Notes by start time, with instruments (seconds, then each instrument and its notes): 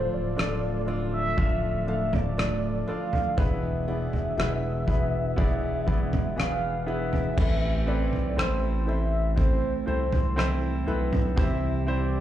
Already playing: grand piano D3 A3 D4 F4 A4 D5, analog synth pad D3 F3 A3 F4 A4, steel-string acoustic guitar D3 D4, soft synth lead C5
0.13 sub bass D1, soft synth lead D5
0.36 sub bass D1, steel-string acoustic guitar A3, grand piano D4 F4 A4 D5, cross-stick
0.86 grand piano D4 F4 A4 D5, steel-string acoustic guitar F4
1.14 soft synth lead E5
1.37 sub bass D1, grand piano D4 F4 A4 E5, analog synth pad D4, steel-string acoustic guitar D4, kick, floor tom
1.87 steel-string acoustic guitar A3, grand piano D4 F4 A4 F5, soft synth lead E5
2.13 soft synth lead D5, floor tom
2.37 grand piano D4 F4 A4 D5, steel-string acoustic guitar D4, cross-stick
2.87 grand piano D4 F4 A4 D5, steel-string acoustic guitar F4, soft synth lead F5
3.13 floor tom
3.37 sub bass E1, steel-string acoustic guitar E2, analog synth pad B2 E3 G#3 G#4, grand piano B2 B3 E4 G#4 B4, soft synth lead E5, kick, floor tom
3.87 grand piano B3 E4 G#4 D5, steel-string acoustic guitar B3
4.13 sub bass E1, floor tom
4.37 sub bass E1, steel-string acoustic guitar G#3, grand piano B3 E4 G#4 B4, cross-stick
4.87 grand piano B3 E4 G#4 B4, kick
5.36 sub bass E1, grand piano B3 E4 G#4 D5, steel-string acoustic guitar B3, kick, floor tom
5.86 steel-string acoustic guitar G#3, grand piano B3 E4 G#4 D5, kick
6.13 floor tom
6.36 grand piano E3 B3 G#4 B4, soft synth lead F5, cross-stick
6.86 grand piano B3 E4 G#4 B4, steel-string acoustic guitar E4, soft synth lead E5
7.13 floor tom
7.37 sub bass A1, grand piano A2 E3 C4 E4 A4 B4, steel-string acoustic guitar A2 E4, analog synth pad E3 A3, kick, floor tom, crash
7.86 grand piano C4 E4 A4 B4, steel-string acoustic guitar C4, soft synth lead D5
8.12 sub bass B1, floor tom
8.36 sub bass A1, grand piano C4 E4 A4 C5, steel-string acoustic guitar E4, soft synth lead C5, cross-stick
8.86 grand piano C4 E4 A4 C5, steel-string acoustic guitar C4, soft synth lead E5
9.36 grand piano C4 E4 A4 C5, steel-string acoustic guitar E4, soft synth lead C5, kick, floor tom
9.86 sub bass C2, grand piano C4 E4 A4 C5, steel-string acoustic guitar C4, soft synth lead C5
10.12 floor tom
10.36 grand piano C4 E4 A4 C5, steel-string acoustic guitar E4, cross-stick
10.86 sub bass B1, steel-string acoustic guitar B3, grand piano C4 E4 A4 B4
11.13 floor tom
11.36 sub bass C2, grand piano C3 G3 C4 E4 G4 C5, steel-string acoustic guitar C3 E4, analog synth pad G3 G4, soft synth lead E5, kick, floor tom
11.86 grand piano C4 E4 G4 C5, steel-string acoustic guitar C4, soft synth lead D5